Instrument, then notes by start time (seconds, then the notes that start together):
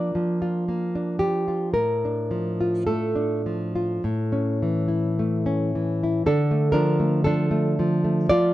nylon-string guitar
Already playing: F3 A#3 D4 F4 D5
0.15 F3
0.42 F4
0.68 A#3
0.95 D4
1.19 F3 G4
1.48 F4
1.74 A2 A#4
2.05 D4
2.31 F3
2.61 F4
2.87 A3 A4
3.16 D4
3.46 F3
3.75 F4
4.04 A2
4.32 C#4
4.63 E3
4.88 E4
5.19 A3
5.46 C#4
5.75 E3
6.03 E4
6.26 D3 D4 A4
6.51 A3
6.72 F3 D4 A#4
7.00 A3
7.24 F3 D4 A4
7.51 A3
7.79 F3
8.04 A3
8.29 F3 F4 D5